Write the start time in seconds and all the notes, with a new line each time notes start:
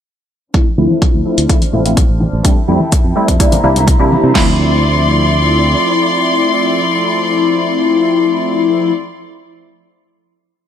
0.54 F3 A3 C4 D4 E4 C5 F6, kick, closed hi-hat
0.78 D2 F3 A3 C4 E4
0.90 tambourine, high conga
1.02 kick, closed hi-hat, tambourine
1.14 D2
1.25 F3 A3 C4 E4, tambourine
1.38 D2, closed hi-hat
1.49 F3 A3 C4 E4, kick, closed hi-hat
1.62 closed hi-hat, high conga
1.73 A1 F3 A3 C4 E4, tambourine, low conga
1.85 F3 A3 C4 E4, closed hi-hat
1.97 kick, closed hi-hat
2.09 A1
2.20 tambourine, high conga, low conga
2.32 A1, tambourine
2.44 G3 A3 C4 D4 E4 A4 G5, kick, closed hi-hat
2.68 F2 G3 A3 C4 E4, tambourine
2.80 tambourine, high conga
2.92 kick, closed hi-hat, tambourine
3.05 F2, tambourine
3.16 G3 A3 C4 E4, tambourine
3.28 F2, kick, closed hi-hat
3.39 G3 A#3 D4 E4 C5 A#5, kick, closed hi-hat
3.52 closed hi-hat, high conga, low conga
3.63 C2 G3 A#3 D4 E4, tambourine
3.76 closed hi-hat, tambourine, low conga
3.88 kick, closed hi-hat
3.99 C3 G3 A#3 D4 E4, tambourine
4.12 tambourine, high conga
4.24 C3, tambourine
4.34 D2 F3 A3 C4 E4 D5 C6, kick, snare, crash